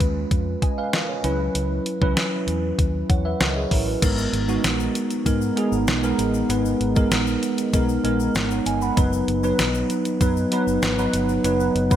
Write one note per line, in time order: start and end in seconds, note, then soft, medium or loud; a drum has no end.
0.00 0.24 D#2 medium
0.00 1.26 G#3 medium
0.00 1.24 C#4 medium
0.00 1.25 F4 medium
0.00 0.79 B4 medium
0.00 kick medium
0.00 closed hi-hat medium
0.31 0.54 F2 medium
0.31 kick medium
0.31 closed hi-hat medium
0.62 0.78 D#5 medium
0.62 0.77 G#5 medium
0.62 kick medium
0.62 closed hi-hat medium
0.78 0.93 B4 medium
0.78 0.93 F5 medium
0.93 1.08 A#4 medium
0.93 1.08 D#5 medium
0.93 snare loud
0.93 closed hi-hat medium
1.09 1.38 G#4 medium
1.09 1.38 C#5 medium
1.23 1.47 C#2 medium
1.23 1.86 F#3 medium
1.23 1.86 C#4 medium
1.23 1.86 E4 medium
1.23 1.86 B4 medium
1.23 closed hi-hat medium
1.55 1.78 C#2 medium
1.55 closed hi-hat medium
1.86 closed hi-hat medium
2.01 2.13 C#2 medium
2.01 2.82 F#3 medium
2.01 2.82 C#4 medium
2.01 2.82 E4 medium
2.01 2.82 B4 medium
2.01 kick medium
2.17 snare loud
2.17 closed hi-hat medium
2.47 2.71 E2 medium
2.47 closed hi-hat medium
2.79 3.02 D#2 medium
2.79 kick medium
2.79 closed hi-hat medium
3.09 3.33 E2 medium
3.09 3.25 C#5 medium
3.09 3.24 F#5 medium
3.09 kick medium
3.09 closed hi-hat medium
3.25 3.40 B4 medium
3.25 3.40 E5 medium
3.40 3.64 C#2 medium
3.40 3.56 A#4 medium
3.40 3.55 D#5 medium
3.40 snare loud
3.40 closed hi-hat medium
3.56 3.71 G#4 medium
3.56 3.71 C#5 medium
3.71 3.95 A1 medium
3.71 3.87 E4 medium
3.71 3.86 A#4 medium
3.71 kick medium
3.71 open hi-hat medium
3.87 4.17 F#4 soft
3.87 4.17 B4 medium
4.02 4.26 G#1 loud
4.02 4.37 G#3 medium
4.02 4.37 B3 medium
4.02 4.37 D#4 medium
4.02 4.37 A#4 medium
4.02 kick loud
4.02 closed hi-hat loud
4.02 crash medium
4.02 shaker medium
4.18 shaker soft
4.33 4.56 G#1 loud
4.33 closed hi-hat medium
4.48 5.06 G#3 medium
4.48 5.06 B3 medium
4.48 5.06 D#4 medium
4.48 5.06 F#4 medium
4.48 shaker soft
4.64 4.87 A#1 medium
4.64 snare loud
4.64 closed hi-hat medium
4.64 shaker medium
4.80 shaker medium
4.95 closed hi-hat medium
4.95 shaker soft
5.11 closed hi-hat medium
5.11 shaker soft
5.25 5.49 G#2 medium
5.25 5.49 G#3 medium
5.25 5.49 B3 medium
5.25 5.49 D#4 medium
5.25 5.49 A#4 medium
5.25 kick medium
5.25 closed hi-hat medium
5.25 shaker medium
5.42 shaker soft
5.56 5.91 G#3 medium
5.56 5.91 B3 medium
5.56 5.91 D#4 medium
5.56 5.92 G#4 medium
5.56 closed hi-hat medium
5.72 5.84 G#1 medium
5.72 shaker soft
5.87 6.11 B1 medium
5.87 snare loud
5.87 closed hi-hat medium
5.87 shaker medium
6.03 6.38 G#3 medium
6.03 6.38 B3 medium
6.03 6.38 D#4 medium
6.03 6.38 A#4 medium
6.03 shaker medium
6.18 6.42 A1 medium
6.18 closed hi-hat medium
6.18 shaker soft
6.34 shaker soft
6.49 6.73 G#1 loud
6.49 6.84 G#3 medium
6.49 6.84 B3 medium
6.49 6.84 D#4 medium
6.49 6.85 B4 medium
6.49 closed hi-hat loud
6.49 shaker medium
6.65 shaker medium
6.80 7.04 G#1 medium
6.80 closed hi-hat medium
6.95 7.53 G#3 medium
6.95 7.53 B3 medium
6.95 7.54 D#4 medium
6.95 7.54 A#4 medium
6.95 kick medium
6.95 shaker soft
7.11 7.35 A#1 medium
7.11 snare loud
7.11 closed hi-hat medium
7.11 shaker medium
7.27 shaker medium
7.43 closed hi-hat medium
7.43 shaker soft
7.58 closed hi-hat medium
7.58 shaker soft
7.73 7.97 B1 medium
7.73 7.96 G#3 medium
7.73 7.97 B3 medium
7.73 7.97 D#4 medium
7.73 7.97 A#4 medium
7.73 kick medium
7.73 closed hi-hat medium
7.73 shaker medium
7.89 shaker soft
8.04 8.27 A#1 medium
8.04 8.39 G#3 medium
8.04 8.39 B3 medium
8.04 8.39 D#4 medium
8.04 8.39 A#4 medium
8.04 closed hi-hat medium
8.20 shaker soft
8.35 8.58 G#1 loud
8.35 snare loud
8.35 closed hi-hat medium
8.35 shaker medium
8.51 shaker medium
8.66 8.89 G1 medium
8.66 8.81 D#5 medium
8.66 8.81 G#5 medium
8.66 closed hi-hat medium
8.66 shaker soft
8.82 9.12 F#5 medium
8.82 9.11 B5 medium
8.82 shaker soft
8.97 9.21 F#1 loud
8.97 9.31 F#3 medium
8.97 9.31 B3 medium
8.97 9.32 D#4 medium
8.97 9.32 B4 medium
8.97 kick loud
8.97 closed hi-hat loud
8.97 shaker medium
9.13 shaker soft
9.28 9.51 F#1 loud
9.28 closed hi-hat medium
9.43 10.01 F#3 medium
9.43 10.01 B3 medium
9.43 10.01 D#4 medium
9.43 10.01 B4 medium
9.43 shaker soft
9.59 9.82 B1 medium
9.59 snare loud
9.59 closed hi-hat medium
9.59 shaker medium
9.75 shaker medium
9.90 closed hi-hat medium
9.90 shaker soft
10.05 closed hi-hat medium
10.05 shaker soft
10.20 10.44 F#2 medium
10.20 10.44 F#3 medium
10.20 10.44 B3 medium
10.20 10.44 D#4 medium
10.20 10.44 B4 medium
10.20 kick medium
10.20 closed hi-hat medium
10.20 shaker medium
10.37 shaker medium
10.52 10.86 F#3 medium
10.52 10.86 B3 medium
10.52 10.87 D#4 medium
10.52 10.87 B4 medium
10.52 closed hi-hat medium
10.67 10.79 F#1 medium
10.67 shaker soft
10.82 11.06 G#1 medium
10.82 snare loud
10.82 closed hi-hat medium
10.82 shaker medium
10.98 11.33 F#3 medium
10.98 11.33 B3 medium
10.98 11.33 D#4 medium
10.98 11.33 B4 medium
10.98 shaker medium
11.13 11.37 G1 medium
11.13 closed hi-hat medium
11.13 shaker medium
11.29 shaker soft
11.44 11.67 F#1 medium
11.44 11.79 F#3 medium
11.44 11.79 B3 medium
11.44 11.79 D#4 medium
11.44 11.79 B4 medium
11.44 closed hi-hat loud
11.44 shaker medium
11.60 shaker soft
11.75 11.96 F#1 loud
11.75 closed hi-hat medium
11.90 11.96 F#3 medium
11.90 11.96 B3 medium
11.90 11.96 D#4 medium
11.90 11.96 B4 medium
11.90 kick medium
11.90 shaker soft